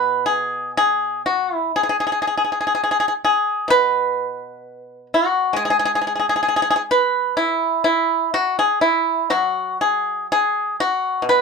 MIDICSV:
0, 0, Header, 1, 2, 480
1, 0, Start_track
1, 0, Tempo, 977199
1, 846, Time_signature, 2, 2, 24, 8
1, 1811, Tempo, 921659
1, 3731, Tempo, 966184
1, 5739, End_track
2, 0, Start_track
2, 0, Title_t, "Pipa"
2, 0, Program_c, 0, 105
2, 0, Note_on_c, 0, 47, 48
2, 0, Note_on_c, 0, 56, 55
2, 0, Note_on_c, 0, 71, 82
2, 124, Note_off_c, 0, 71, 0
2, 127, Note_on_c, 0, 68, 69
2, 348, Note_off_c, 0, 68, 0
2, 359, Note_off_c, 0, 56, 0
2, 380, Note_on_c, 0, 68, 77
2, 595, Note_off_c, 0, 68, 0
2, 618, Note_on_c, 0, 66, 61
2, 761, Note_off_c, 0, 66, 0
2, 761, Note_on_c, 0, 64, 61
2, 837, Note_off_c, 0, 64, 0
2, 864, Note_on_c, 0, 68, 68
2, 891, Note_off_c, 0, 68, 0
2, 901, Note_on_c, 0, 68, 54
2, 924, Note_off_c, 0, 68, 0
2, 930, Note_on_c, 0, 68, 60
2, 961, Note_off_c, 0, 68, 0
2, 983, Note_on_c, 0, 68, 48
2, 1008, Note_off_c, 0, 68, 0
2, 1015, Note_on_c, 0, 68, 50
2, 1036, Note_off_c, 0, 68, 0
2, 1041, Note_on_c, 0, 68, 48
2, 1074, Note_off_c, 0, 68, 0
2, 1090, Note_on_c, 0, 68, 49
2, 1111, Note_off_c, 0, 68, 0
2, 1117, Note_on_c, 0, 68, 43
2, 1149, Note_off_c, 0, 68, 0
2, 1167, Note_on_c, 0, 68, 49
2, 1193, Note_off_c, 0, 68, 0
2, 1201, Note_on_c, 0, 68, 40
2, 1229, Note_off_c, 0, 68, 0
2, 1238, Note_on_c, 0, 68, 45
2, 1266, Note_off_c, 0, 68, 0
2, 1280, Note_on_c, 0, 68, 45
2, 1305, Note_off_c, 0, 68, 0
2, 1311, Note_on_c, 0, 68, 46
2, 1330, Note_off_c, 0, 47, 0
2, 1340, Note_off_c, 0, 68, 0
2, 1349, Note_on_c, 0, 68, 53
2, 1378, Note_off_c, 0, 68, 0
2, 1393, Note_on_c, 0, 68, 56
2, 1419, Note_off_c, 0, 68, 0
2, 1430, Note_on_c, 0, 68, 54
2, 1456, Note_off_c, 0, 68, 0
2, 1473, Note_on_c, 0, 68, 58
2, 1496, Note_off_c, 0, 68, 0
2, 1513, Note_on_c, 0, 68, 54
2, 1535, Note_off_c, 0, 68, 0
2, 1594, Note_on_c, 0, 68, 65
2, 1804, Note_off_c, 0, 68, 0
2, 1807, Note_on_c, 0, 47, 49
2, 1820, Note_on_c, 0, 71, 91
2, 2528, Note_off_c, 0, 71, 0
2, 2568, Note_on_c, 0, 66, 64
2, 2772, Note_on_c, 0, 56, 49
2, 2777, Note_off_c, 0, 66, 0
2, 2789, Note_on_c, 0, 68, 74
2, 2819, Note_off_c, 0, 68, 0
2, 2834, Note_on_c, 0, 68, 62
2, 2854, Note_off_c, 0, 68, 0
2, 2861, Note_on_c, 0, 68, 65
2, 2891, Note_off_c, 0, 68, 0
2, 2908, Note_on_c, 0, 68, 59
2, 2933, Note_off_c, 0, 68, 0
2, 2940, Note_on_c, 0, 68, 62
2, 2967, Note_off_c, 0, 68, 0
2, 2991, Note_on_c, 0, 68, 51
2, 3011, Note_off_c, 0, 68, 0
2, 3023, Note_on_c, 0, 68, 52
2, 3045, Note_off_c, 0, 68, 0
2, 3052, Note_on_c, 0, 68, 47
2, 3078, Note_off_c, 0, 68, 0
2, 3096, Note_on_c, 0, 68, 49
2, 3111, Note_off_c, 0, 68, 0
2, 3117, Note_on_c, 0, 68, 49
2, 3146, Note_off_c, 0, 68, 0
2, 3168, Note_on_c, 0, 68, 58
2, 3191, Note_off_c, 0, 68, 0
2, 3202, Note_on_c, 0, 68, 46
2, 3226, Note_off_c, 0, 68, 0
2, 3238, Note_on_c, 0, 68, 54
2, 3248, Note_off_c, 0, 47, 0
2, 3262, Note_off_c, 0, 68, 0
2, 3268, Note_on_c, 0, 68, 57
2, 3295, Note_off_c, 0, 68, 0
2, 3309, Note_on_c, 0, 68, 64
2, 3334, Note_off_c, 0, 68, 0
2, 3339, Note_on_c, 0, 68, 56
2, 3367, Note_off_c, 0, 68, 0
2, 3383, Note_on_c, 0, 68, 66
2, 3404, Note_off_c, 0, 68, 0
2, 3411, Note_on_c, 0, 68, 61
2, 3440, Note_off_c, 0, 68, 0
2, 3489, Note_on_c, 0, 71, 74
2, 3715, Note_off_c, 0, 71, 0
2, 3728, Note_on_c, 0, 64, 67
2, 3958, Note_off_c, 0, 64, 0
2, 3964, Note_on_c, 0, 64, 70
2, 4188, Note_off_c, 0, 64, 0
2, 4202, Note_off_c, 0, 56, 0
2, 4211, Note_on_c, 0, 66, 75
2, 4320, Note_off_c, 0, 66, 0
2, 4334, Note_on_c, 0, 68, 71
2, 4443, Note_off_c, 0, 68, 0
2, 4446, Note_on_c, 0, 64, 63
2, 4674, Note_off_c, 0, 64, 0
2, 4688, Note_on_c, 0, 54, 45
2, 4690, Note_on_c, 0, 66, 77
2, 4919, Note_off_c, 0, 66, 0
2, 4942, Note_on_c, 0, 68, 65
2, 5165, Note_off_c, 0, 68, 0
2, 5195, Note_on_c, 0, 68, 78
2, 5410, Note_off_c, 0, 68, 0
2, 5435, Note_on_c, 0, 66, 73
2, 5641, Note_off_c, 0, 54, 0
2, 5643, Note_on_c, 0, 47, 50
2, 5646, Note_off_c, 0, 66, 0
2, 5677, Note_on_c, 0, 71, 85
2, 5739, Note_off_c, 0, 47, 0
2, 5739, Note_off_c, 0, 71, 0
2, 5739, End_track
0, 0, End_of_file